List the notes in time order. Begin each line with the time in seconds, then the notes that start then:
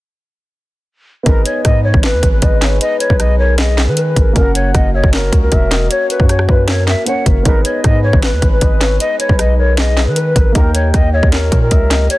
1.23 G#1 G#3 B3 D#4 G#4 A#4 B4 D#5, kick, closed hi-hat
1.29 B4
1.45 C#5, closed hi-hat
1.65 G#2 D#5, kick, cross-stick, closed hi-hat
1.84 C#5
1.94 G#1, kick
2.03 B4, snare, clap, closed hi-hat
2.13 D#2
2.23 G#1, kick, closed hi-hat
2.33 B4
2.42 G#1 D#5, kick, closed hi-hat
2.62 C#5, snare, clap, closed hi-hat
2.81 B4 D#5, closed hi-hat
3.00 C#5, closed hi-hat
3.10 B1, kick
3.20 D#5, cross-stick, closed hi-hat
3.39 A#4 C#5
3.58 G#4 D#5, snare, clap, closed hi-hat
3.78 snare, clap
3.87 D#3 B4
3.97 B4, closed hi-hat
4.16 G#1 A#4, kick, closed hi-hat
4.33 F#1 A#3 C#4 F#4 A#4 F#5, kick, closed hi-hat
4.39 A#4
4.55 C#5, closed hi-hat
4.75 F#1 D#5, kick, cross-stick, closed hi-hat
4.94 C#5 D#5
5.04 F#1, kick
5.13 A#4 C#5, snare, clap, closed hi-hat
5.32 C#2, kick, closed hi-hat
5.42 A#4
5.52 E1 E5, kick, closed hi-hat
5.71 D#5, snare, clap, closed hi-hat
5.90 C#5, closed hi-hat
6.10 B4, closed hi-hat
6.20 F#2, kick
6.29 C#5, cross-stick, closed hi-hat
6.39 cross-stick
6.49 F#2 B4, kick
6.68 A#4 C#5, snare, clap, closed hi-hat
6.87 E5, snare, clap
7.05 A#3 C#4 F#4 C#5 F#5, closed hi-hat
7.26 F#1 A#4, kick, closed hi-hat
7.43 G#1 G#3 B3 D#4 G#4 A#4 B4 D#5, kick, closed hi-hat
7.48 B4
7.65 C#5, closed hi-hat
7.84 G#2 D#5, kick, cross-stick, closed hi-hat
8.04 C#5
8.13 G#1, kick
8.22 B4, snare, clap, closed hi-hat
8.33 D#2
8.42 G#1, kick, closed hi-hat
8.52 B4
8.61 G#1 D#5, kick, closed hi-hat
8.81 C#5, snare, clap, closed hi-hat
9.00 B4 D#5, closed hi-hat
9.20 C#5, closed hi-hat
9.29 B1, kick
9.39 D#5, cross-stick, closed hi-hat
9.58 A#4 C#5
9.77 G#4 D#5, snare, clap, closed hi-hat
9.97 snare, clap
10.07 D#3 B4
10.16 B4, closed hi-hat
10.36 G#1 A#4, kick, closed hi-hat
10.52 D#2 D#3 A#3 D#4 G4 A#4 G5, kick, closed hi-hat
10.58 A#4
10.74 C#5, closed hi-hat
10.94 D#2 D#5, kick, cross-stick, closed hi-hat
11.13 C#5 D#5
11.23 D#2, kick
11.32 A#4 C#5, snare, clap, closed hi-hat
11.52 A#2, kick, closed hi-hat
11.62 A#4
11.71 C#2 E5, kick, closed hi-hat
11.91 D#5, snare, clap, closed hi-hat
12.10 C#5, closed hi-hat